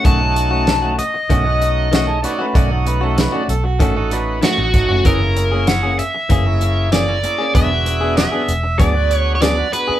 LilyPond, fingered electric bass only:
\new Staff \with { instrumentName = "Fingered electric bass" } { \clef bass \time 4/4 \key b \mixolydian \tempo 4 = 96 b,,2 b,,2 | b,,4. b,,8 a,,4~ a,,16 a,,16 gis,,16 fis,,16 | fis,,2 fis,,2 | e,,4. e,,8 d,4.~ d,16 r16 | }